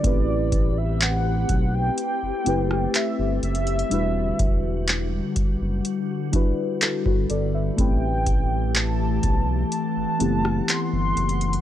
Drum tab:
HH |x---x---x---x---x---x---x---xxxx|x---x---x---x---x---x---x---x---|x---x---x---x---x---x---x---xxxx|
CP |--------x---------------x-------|--------x---------------x-------|--------x---------------x-------|
SD |----------------------r---------|--------------------------------|----------------------r---------|
BD |o---o-------o-------------------|----o-------o-------o-----o-----|o---o-------o-------------------|